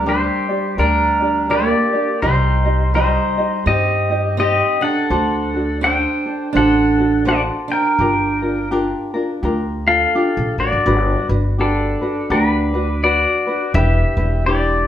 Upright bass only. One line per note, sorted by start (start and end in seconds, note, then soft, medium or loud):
0.00 0.27 D2 medium
0.78 1.72 D2 medium
2.23 3.16 C2 medium
3.66 4.60 G2 medium
5.10 6.04 D2 medium
6.55 7.49 A1 medium
7.99 8.92 G1 medium
9.43 10.04 D2 medium
10.37 10.56 A#1 medium
10.58 10.71 A1 medium
10.72 10.85 G1 medium
10.86 11.14 G1 loud
11.29 11.95 G1 medium
12.30 13.24 D2 medium
13.74 14.03 E1 loud
14.17 14.83 E1 medium